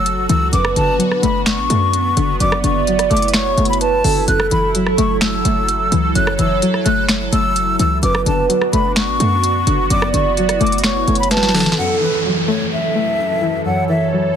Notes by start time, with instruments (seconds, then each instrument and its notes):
Already playing: 808-style bass F#1, synth pluck F#3 A3, analog synth pad F#3 F#4 A4, flute E6
0.06 closed hi-hat
0.29 808-style bass C#2, synth pluck E3, flute E6, closed hi-hat
0.52 808-style bass F#1, synth pluck F#2, analog synth pad B3 D4, soft synth lead B4, flute D6, closed hi-hat
0.65 cross-stick
0.76 808-style bass F#1, synth pluck D3, flute A5, closed hi-hat
0.99 synth pluck F#3, closed hi-hat
1.12 cross-stick
1.23 808-style bass F#1, synth pluck A3, flute B5, closed hi-hat
1.46 flute C#6, finger snap, snare, closed hi-hat
1.58 808-style bass A1
1.70 808-style bass F#2, synth pluck A3, closed hi-hat
1.93 closed hi-hat
2.17 808-style bass F#1, synth pluck D3, closed hi-hat
2.40 808-style bass F#1, synth pluck F#2, analog synth pad E4, soft synth lead D5, flute D6, closed hi-hat
2.52 cross-stick
2.64 808-style bass F#1, synth pluck D3, flute C#6, closed hi-hat
2.87 synth pluck F#3, closed hi-hat
2.99 cross-stick, closed hi-hat
3.10 808-style bass F#1, synth pluck A3, flute D6, closed hi-hat
3.17 closed hi-hat
3.22 closed hi-hat
3.28 closed hi-hat
3.34 soft synth lead C#5, flute C#6, finger snap, snare, closed hi-hat
3.58 808-style bass F#1, synth pluck A3, closed hi-hat
3.65 flute B5, closed hi-hat
3.73 closed hi-hat
3.81 soft synth lead B4, flute A5, closed hi-hat
4.04 808-style bass F#1, synth pluck D3, soft synth lead A4, open hi-hat
4.28 808-style bass F#1, synth pluck F#2, analog synth pad F#3 A4, soft synth lead A4, flute F#6, closed hi-hat
4.40 cross-stick
4.51 808-style bass F#1, synth pluck E3, flute B5, closed hi-hat
4.75 synth pluck F#3, closed hi-hat
4.87 cross-stick
4.98 808-style bass F#1, synth pluck A3, flute C#6, closed hi-hat
5.21 flute E6, finger snap, snare, closed hi-hat
5.45 808-style bass F#1, synth pluck A3, closed hi-hat
5.69 closed hi-hat
5.92 808-style bass C#2, synth pluck E3, closed hi-hat
6.15 808-style bass F#1, synth pluck F#2, soft synth lead C#5, flute F#6, closed hi-hat
6.27 cross-stick
6.39 808-style bass F#1, synth pluck E3, flute E6, closed hi-hat
6.62 synth pluck F#3, closed hi-hat
6.74 cross-stick
6.86 808-style bass F#1, synth pluck A3, flute F#6, closed hi-hat
7.09 finger snap, snare, closed hi-hat
7.33 808-style bass F#1, synth pluck A3, flute E6, closed hi-hat
7.56 closed hi-hat
7.79 808-style bass C#2, synth pluck E3, flute E6, closed hi-hat
8.03 808-style bass F#1, synth pluck F#2, analog synth pad B3 D4 F#4, soft synth lead B4, flute D6, closed hi-hat
8.15 cross-stick
8.26 808-style bass F#1, synth pluck D3, flute A5, closed hi-hat
8.49 synth pluck F#3, closed hi-hat
8.62 cross-stick
8.73 808-style bass F#1, synth pluck A3, flute B5, closed hi-hat
8.96 flute C#6, finger snap, snare, closed hi-hat
9.08 808-style bass A1
9.20 808-style bass F#2, synth pluck A3, closed hi-hat
9.44 closed hi-hat
9.67 808-style bass F#1, synth pluck D3, closed hi-hat
9.90 808-style bass F#1, synth pluck F#2, analog synth pad E4, soft synth lead D5, flute D6, closed hi-hat
10.02 cross-stick
10.14 808-style bass F#1, synth pluck D3, flute C#6, closed hi-hat
10.37 synth pluck F#3, closed hi-hat
10.49 cross-stick, closed hi-hat
10.60 808-style bass F#1, synth pluck A3, flute D6, closed hi-hat
10.67 closed hi-hat
10.72 closed hi-hat
10.78 closed hi-hat
10.84 soft synth lead C#5, flute C#6, finger snap, snare, closed hi-hat
11.08 808-style bass F#1, synth pluck A3, closed hi-hat
11.15 flute B5, closed hi-hat
11.23 closed hi-hat
11.31 soft synth lead B4, flute A5, snare, closed hi-hat
11.37 snare
11.43 snare
11.49 snare
11.54 synth pluck D3, soft synth lead A4, snare, open hi-hat
11.60 snare
11.66 snare
11.72 snare
11.78 analog synth pad F#2 E3 A4, synth pluck F#2, soft synth lead A4, flute F#5, downlifter
12.01 synth pluck E3, flute B4
12.25 synth pluck F#3
12.48 synth pluck A3, flute C#5
12.72 flute E5
12.95 synth pluck A3
13.42 synth pluck E3
13.65 synth pluck F#2, soft synth lead C#5, flute F#5
13.89 synth pluck E3, flute E5
14.13 synth pluck F#3